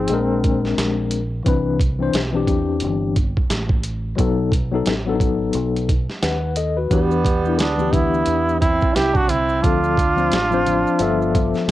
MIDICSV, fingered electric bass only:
0, 0, Header, 1, 3, 480
1, 0, Start_track
1, 0, Tempo, 681818
1, 1026, Time_signature, 4, 2, 24, 8
1, 8244, End_track
2, 0, Start_track
2, 0, Title_t, "Fingered electric bass"
2, 0, Program_c, 0, 33
2, 68, Note_on_c, 0, 34, 112
2, 523, Note_off_c, 0, 34, 0
2, 546, Note_on_c, 0, 34, 94
2, 1002, Note_off_c, 0, 34, 0
2, 1027, Note_on_c, 0, 36, 101
2, 1483, Note_off_c, 0, 36, 0
2, 1505, Note_on_c, 0, 35, 83
2, 1733, Note_off_c, 0, 35, 0
2, 1741, Note_on_c, 0, 40, 84
2, 1986, Note_on_c, 0, 31, 94
2, 1996, Note_off_c, 0, 40, 0
2, 2350, Note_off_c, 0, 31, 0
2, 2463, Note_on_c, 0, 33, 97
2, 2920, Note_off_c, 0, 33, 0
2, 2944, Note_on_c, 0, 35, 96
2, 3401, Note_off_c, 0, 35, 0
2, 3423, Note_on_c, 0, 33, 84
2, 3880, Note_off_c, 0, 33, 0
2, 3905, Note_on_c, 0, 35, 99
2, 4269, Note_off_c, 0, 35, 0
2, 4384, Note_on_c, 0, 39, 99
2, 4841, Note_off_c, 0, 39, 0
2, 4862, Note_on_c, 0, 40, 88
2, 5345, Note_off_c, 0, 40, 0
2, 5345, Note_on_c, 0, 38, 94
2, 5801, Note_off_c, 0, 38, 0
2, 5824, Note_on_c, 0, 40, 95
2, 6189, Note_off_c, 0, 40, 0
2, 6305, Note_on_c, 0, 36, 87
2, 6761, Note_off_c, 0, 36, 0
2, 6786, Note_on_c, 0, 38, 89
2, 7242, Note_off_c, 0, 38, 0
2, 7262, Note_on_c, 0, 33, 95
2, 7628, Note_off_c, 0, 33, 0
2, 7742, Note_on_c, 0, 31, 105
2, 8108, Note_off_c, 0, 31, 0
2, 8220, Note_on_c, 0, 35, 84
2, 8244, Note_off_c, 0, 35, 0
2, 8244, End_track
3, 0, Start_track
3, 0, Title_t, "Muted fingered electric bass strokes"
3, 2372, Note_on_c, 9, 29, 45
3, 2442, Note_off_c, 9, 29, 0
3, 4289, Note_on_c, 9, 29, 43
3, 4359, Note_off_c, 9, 29, 0
3, 6211, Note_on_c, 9, 29, 47
3, 6281, Note_off_c, 9, 29, 0
3, 7646, Note_on_c, 9, 29, 40
3, 7717, Note_off_c, 9, 29, 0
3, 8124, Note_on_c, 9, 29, 41
3, 8194, Note_off_c, 9, 29, 0
3, 8244, End_track
0, 0, End_of_file